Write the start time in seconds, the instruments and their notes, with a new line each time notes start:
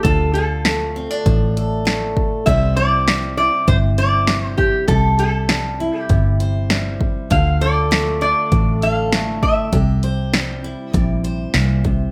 Already playing: steel-string acoustic guitar A4
0.03 fingered electric bass D2, steel-string acoustic guitar D3 F4, resonator guitar played with a steel bar A4, kick, closed hi-hat
0.34 steel-string acoustic guitar F4, resonator guitar played with a steel bar A4, closed hi-hat
0.65 steel-string acoustic guitar A3, snare, closed hi-hat
0.96 steel-string acoustic guitar C4
1.11 steel-string acoustic guitar D4
1.26 fingered electric bass A1, steel-string acoustic guitar A2, kick, closed hi-hat
1.57 steel-string acoustic guitar A4, closed hi-hat
1.85 steel-string acoustic guitar A3, snare, closed hi-hat
2.17 kick
2.46 fingered electric bass C2, steel-string acoustic guitar C3 G3 E4 G4 C5, resonator guitar played with a steel bar E5, kick, closed hi-hat
2.76 steel-string acoustic guitar C5, resonator guitar played with a steel bar D5, closed hi-hat
3.08 steel-string acoustic guitar G3, snare, closed hi-hat
3.37 steel-string acoustic guitar E4, resonator guitar played with a steel bar D5
3.67 fingered electric bass G1, steel-string acoustic guitar C3, resonator guitar played with a steel bar C5, kick, closed hi-hat
3.98 steel-string acoustic guitar C5, resonator guitar played with a steel bar D5, closed hi-hat
4.27 steel-string acoustic guitar G3, snare, closed hi-hat
4.46 resonator guitar played with a steel bar C5
4.57 resonator guitar played with a steel bar G4, kick
4.88 fingered electric bass C2, steel-string acoustic guitar C3 G4, resonator guitar played with a steel bar A4, kick, closed hi-hat
5.19 steel-string acoustic guitar G4, resonator guitar played with a steel bar A4, closed hi-hat
5.49 steel-string acoustic guitar G3, snare, closed hi-hat
5.80 steel-string acoustic guitar E4
5.99 resonator guitar played with a steel bar G4
6.09 fingered electric bass G1, steel-string acoustic guitar C3, kick, closed hi-hat
6.40 steel-string acoustic guitar C5, closed hi-hat
6.70 steel-string acoustic guitar G3, snare, closed hi-hat
7.01 kick
7.30 fingered electric bass D2, steel-string acoustic guitar D3 F4, resonator guitar played with a steel bar F5, kick, closed hi-hat
7.61 steel-string acoustic guitar A4, resonator guitar played with a steel bar D5, closed hi-hat
7.91 steel-string acoustic guitar A3, snare, closed hi-hat
8.21 steel-string acoustic guitar D4, resonator guitar played with a steel bar D5
8.52 fingered electric bass A1, steel-string acoustic guitar A2, kick, closed hi-hat
8.82 steel-string acoustic guitar A4, resonator guitar played with a steel bar F5, closed hi-hat
9.12 steel-string acoustic guitar A3, snare, closed hi-hat
9.43 resonator guitar played with a steel bar E5, kick
9.72 fingered electric bass C2, steel-string acoustic guitar C3 G4, kick, closed hi-hat
10.03 steel-string acoustic guitar C5, closed hi-hat
10.33 steel-string acoustic guitar G3, snare, closed hi-hat
10.64 steel-string acoustic guitar E4
10.93 fingered electric bass A#1, steel-string acoustic guitar C3, resonator guitar played with a steel bar D5, kick, closed hi-hat
11.24 steel-string acoustic guitar C5, closed hi-hat
11.54 fingered electric bass C2, steel-string acoustic guitar A#2, snare, closed hi-hat
11.84 steel-string acoustic guitar C3, kick